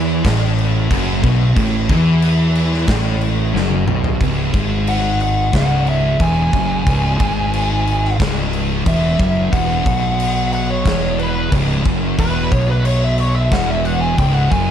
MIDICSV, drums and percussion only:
0, 0, Header, 1, 2, 480
1, 0, Start_track
1, 0, Key_signature, 4, "minor"
1, 0, Tempo, 664452
1, 1128, Time_signature, 4, 2, 24, 8
1, 10626, End_track
2, 0, Start_track
2, 0, Title_t, "Drums"
2, 178, Note_on_c, 9, 36, 120
2, 178, Note_on_c, 9, 49, 91
2, 189, Note_on_c, 9, 38, 118
2, 250, Note_off_c, 9, 36, 0
2, 250, Note_off_c, 9, 49, 0
2, 262, Note_off_c, 9, 38, 0
2, 422, Note_on_c, 9, 49, 60
2, 494, Note_off_c, 9, 49, 0
2, 656, Note_on_c, 9, 36, 102
2, 659, Note_on_c, 9, 49, 92
2, 728, Note_off_c, 9, 36, 0
2, 732, Note_off_c, 9, 49, 0
2, 893, Note_on_c, 9, 36, 112
2, 894, Note_on_c, 9, 49, 69
2, 965, Note_off_c, 9, 36, 0
2, 966, Note_off_c, 9, 49, 0
2, 1130, Note_on_c, 9, 36, 109
2, 1130, Note_on_c, 9, 49, 80
2, 1202, Note_off_c, 9, 49, 0
2, 1203, Note_off_c, 9, 36, 0
2, 1367, Note_on_c, 9, 49, 66
2, 1369, Note_on_c, 9, 36, 123
2, 1440, Note_off_c, 9, 49, 0
2, 1441, Note_off_c, 9, 36, 0
2, 1606, Note_on_c, 9, 49, 77
2, 1678, Note_off_c, 9, 49, 0
2, 1845, Note_on_c, 9, 49, 68
2, 1917, Note_off_c, 9, 49, 0
2, 1975, Note_on_c, 9, 38, 34
2, 2047, Note_off_c, 9, 38, 0
2, 2078, Note_on_c, 9, 49, 88
2, 2081, Note_on_c, 9, 36, 103
2, 2089, Note_on_c, 9, 38, 122
2, 2150, Note_off_c, 9, 49, 0
2, 2153, Note_off_c, 9, 36, 0
2, 2161, Note_off_c, 9, 38, 0
2, 2320, Note_on_c, 9, 49, 62
2, 2393, Note_off_c, 9, 49, 0
2, 2573, Note_on_c, 9, 38, 68
2, 2645, Note_off_c, 9, 38, 0
2, 2682, Note_on_c, 9, 48, 76
2, 2754, Note_off_c, 9, 48, 0
2, 2800, Note_on_c, 9, 45, 98
2, 2872, Note_off_c, 9, 45, 0
2, 2921, Note_on_c, 9, 43, 104
2, 2993, Note_off_c, 9, 43, 0
2, 3039, Note_on_c, 9, 36, 103
2, 3042, Note_on_c, 9, 49, 81
2, 3111, Note_off_c, 9, 36, 0
2, 3115, Note_off_c, 9, 49, 0
2, 3278, Note_on_c, 9, 36, 110
2, 3280, Note_on_c, 9, 49, 69
2, 3351, Note_off_c, 9, 36, 0
2, 3352, Note_off_c, 9, 49, 0
2, 3520, Note_on_c, 9, 49, 84
2, 3592, Note_off_c, 9, 49, 0
2, 3759, Note_on_c, 9, 49, 61
2, 3831, Note_off_c, 9, 49, 0
2, 3997, Note_on_c, 9, 36, 117
2, 3998, Note_on_c, 9, 49, 84
2, 4010, Note_on_c, 9, 38, 119
2, 4069, Note_off_c, 9, 36, 0
2, 4070, Note_off_c, 9, 49, 0
2, 4082, Note_off_c, 9, 38, 0
2, 4239, Note_on_c, 9, 49, 52
2, 4312, Note_off_c, 9, 49, 0
2, 4478, Note_on_c, 9, 36, 108
2, 4480, Note_on_c, 9, 49, 71
2, 4551, Note_off_c, 9, 36, 0
2, 4553, Note_off_c, 9, 49, 0
2, 4720, Note_on_c, 9, 36, 107
2, 4721, Note_on_c, 9, 49, 59
2, 4792, Note_off_c, 9, 36, 0
2, 4793, Note_off_c, 9, 49, 0
2, 4961, Note_on_c, 9, 36, 116
2, 4963, Note_on_c, 9, 49, 79
2, 5033, Note_off_c, 9, 36, 0
2, 5036, Note_off_c, 9, 49, 0
2, 5202, Note_on_c, 9, 36, 121
2, 5207, Note_on_c, 9, 49, 65
2, 5274, Note_off_c, 9, 36, 0
2, 5279, Note_off_c, 9, 49, 0
2, 5443, Note_on_c, 9, 49, 80
2, 5516, Note_off_c, 9, 49, 0
2, 5688, Note_on_c, 9, 49, 57
2, 5760, Note_off_c, 9, 49, 0
2, 5815, Note_on_c, 9, 38, 30
2, 5887, Note_off_c, 9, 38, 0
2, 5923, Note_on_c, 9, 36, 112
2, 5925, Note_on_c, 9, 49, 90
2, 5936, Note_on_c, 9, 38, 125
2, 5995, Note_off_c, 9, 36, 0
2, 5997, Note_off_c, 9, 49, 0
2, 6008, Note_off_c, 9, 38, 0
2, 6163, Note_on_c, 9, 49, 65
2, 6236, Note_off_c, 9, 49, 0
2, 6402, Note_on_c, 9, 36, 107
2, 6403, Note_on_c, 9, 49, 93
2, 6474, Note_off_c, 9, 36, 0
2, 6475, Note_off_c, 9, 49, 0
2, 6642, Note_on_c, 9, 36, 106
2, 6647, Note_on_c, 9, 49, 59
2, 6715, Note_off_c, 9, 36, 0
2, 6719, Note_off_c, 9, 49, 0
2, 6883, Note_on_c, 9, 36, 110
2, 6884, Note_on_c, 9, 49, 80
2, 6955, Note_off_c, 9, 36, 0
2, 6956, Note_off_c, 9, 49, 0
2, 7123, Note_on_c, 9, 36, 117
2, 7129, Note_on_c, 9, 49, 77
2, 7196, Note_off_c, 9, 36, 0
2, 7201, Note_off_c, 9, 49, 0
2, 7366, Note_on_c, 9, 49, 89
2, 7439, Note_off_c, 9, 49, 0
2, 7605, Note_on_c, 9, 49, 62
2, 7678, Note_off_c, 9, 49, 0
2, 7842, Note_on_c, 9, 36, 115
2, 7844, Note_on_c, 9, 49, 87
2, 7856, Note_on_c, 9, 38, 115
2, 7915, Note_off_c, 9, 36, 0
2, 7916, Note_off_c, 9, 49, 0
2, 7928, Note_off_c, 9, 38, 0
2, 8087, Note_on_c, 9, 49, 57
2, 8159, Note_off_c, 9, 49, 0
2, 8324, Note_on_c, 9, 36, 110
2, 8326, Note_on_c, 9, 49, 84
2, 8396, Note_off_c, 9, 36, 0
2, 8398, Note_off_c, 9, 49, 0
2, 8564, Note_on_c, 9, 36, 108
2, 8566, Note_on_c, 9, 49, 59
2, 8636, Note_off_c, 9, 36, 0
2, 8639, Note_off_c, 9, 49, 0
2, 8803, Note_on_c, 9, 36, 98
2, 8804, Note_on_c, 9, 49, 84
2, 8876, Note_off_c, 9, 36, 0
2, 8876, Note_off_c, 9, 49, 0
2, 9043, Note_on_c, 9, 36, 109
2, 9043, Note_on_c, 9, 49, 70
2, 9115, Note_off_c, 9, 36, 0
2, 9115, Note_off_c, 9, 49, 0
2, 9283, Note_on_c, 9, 49, 76
2, 9355, Note_off_c, 9, 49, 0
2, 9521, Note_on_c, 9, 49, 62
2, 9593, Note_off_c, 9, 49, 0
2, 9765, Note_on_c, 9, 36, 118
2, 9765, Note_on_c, 9, 49, 77
2, 9776, Note_on_c, 9, 38, 107
2, 9837, Note_off_c, 9, 36, 0
2, 9837, Note_off_c, 9, 49, 0
2, 9848, Note_off_c, 9, 38, 0
2, 10006, Note_on_c, 9, 49, 65
2, 10078, Note_off_c, 9, 49, 0
2, 10247, Note_on_c, 9, 36, 107
2, 10247, Note_on_c, 9, 49, 84
2, 10319, Note_off_c, 9, 36, 0
2, 10319, Note_off_c, 9, 49, 0
2, 10487, Note_on_c, 9, 36, 100
2, 10487, Note_on_c, 9, 49, 60
2, 10559, Note_off_c, 9, 36, 0
2, 10559, Note_off_c, 9, 49, 0
2, 10626, End_track
0, 0, End_of_file